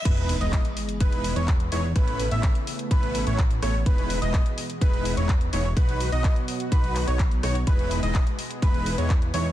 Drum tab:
CC |x---------------|----------------|----------------|----------------|
HH |xxoxxxoxxxoxxxo-|xxoxxxoxxxoxxxo-|xxoxxxoxxxoxxxo-|xxoxxxoxxxoxxxox|
CP |----x-------x---|----x-------x---|----x-------x---|----x-----x-x---|
SD |----------------|r-------------r-|----------------|r-------------r-|
BD |o---o---o---o---|o---o---o---o---|o---o---o---o---|o---o---o---o---|

CC |----------------|
HH |xxoxxxoxxxoxxxo-|
CP |----x-------x---|
SD |----------------|
BD |o---o---o---o---|